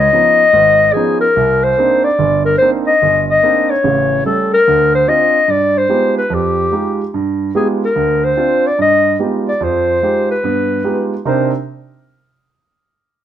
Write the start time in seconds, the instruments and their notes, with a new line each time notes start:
0.00 clarinet D#5
0.13 grand piano F3 B3 C#4 D#4
0.53 grand piano G#1
0.93 grand piano F3 B3 C#4 D#4, clarinet G#4
1.21 clarinet A#4
1.36 grand piano C2
1.64 clarinet C5
1.77 grand piano A#3 C4 D4 D#4
2.04 clarinet D5
2.19 grand piano G1
2.45 clarinet A#4
2.58 grand piano A#3 C4 D4 D#4, clarinet C5
2.87 clarinet D#5
3.02 grand piano G1
3.31 clarinet D#5
3.43 grand piano A#3 C4 D4 D#4
3.70 clarinet C#5
3.84 grand piano A1 C#3
4.25 grand piano G3 A3 C#4, clarinet A4
4.54 clarinet A#4
4.67 grand piano D2
4.95 clarinet C5
5.07 grand piano C4 D4 F4, clarinet D#5
5.48 grand piano G2, clarinet D5
5.78 clarinet C5
5.89 grand piano G#3 B3 D#4 F4 G4
6.18 clarinet B4
6.30 grand piano F2
6.34 clarinet G4
6.72 grand piano G#3 D#4 F4 G4
7.14 grand piano G2
7.55 grand piano G#3 B3 D#4 F4 G4, clarinet G#4
7.85 clarinet A#4
7.96 grand piano D2
8.24 clarinet C5
8.37 grand piano C4 D4 F4
8.67 clarinet D5
8.79 grand piano G2, clarinet D#5
9.19 grand piano G#3 B3 D#4 F4 G4
9.49 clarinet D5
9.61 grand piano F2 F3, clarinet C5
10.03 grand piano G#3 D#4 F4 G4
10.31 clarinet B4
10.44 grand piano G2 B3
10.84 grand piano G#3 B3 D#4 F4 G4
11.25 grand piano C3 C4 D4 D#4 A#4, clarinet C5